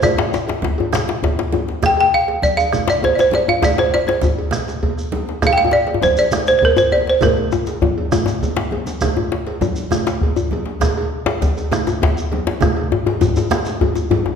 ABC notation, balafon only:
X:1
M:12/8
L:1/16
Q:3/8=134
K:Bb
V:1 name="Balafon"
d6 z16 z2 | g2 g2 f4 d2 f4 d2 c3/2 d/2 c2 d2 f2 | d2 c2 d2 c6 z12 | f3/2 g/2 f2 d4 c2 d4 c3/2 c/2 B2 c2 d2 c2 |
B16- B4 z4 | z24 | z24 | z24 |]